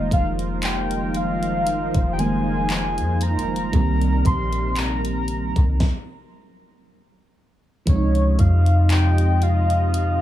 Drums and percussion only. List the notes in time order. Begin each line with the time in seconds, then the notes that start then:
0.11 kick, closed hi-hat
0.39 closed hi-hat
0.63 clap, closed hi-hat
0.91 closed hi-hat
1.14 closed hi-hat
1.43 closed hi-hat
1.67 closed hi-hat
1.94 kick, closed hi-hat
2.19 closed hi-hat
2.70 clap, closed hi-hat
2.98 closed hi-hat
3.21 closed hi-hat, open hi-hat
3.39 closed hi-hat
3.56 closed hi-hat
3.73 kick, closed hi-hat
4.01 closed hi-hat
4.25 kick, closed hi-hat
4.53 closed hi-hat
4.76 clap, closed hi-hat
5.05 closed hi-hat
5.28 closed hi-hat
5.56 kick, closed hi-hat
5.80 kick, snare
7.87 kick, closed hi-hat
8.15 closed hi-hat
8.39 kick, closed hi-hat
8.66 closed hi-hat
8.90 clap, closed hi-hat
9.18 closed hi-hat
9.42 closed hi-hat
9.70 closed hi-hat
9.94 closed hi-hat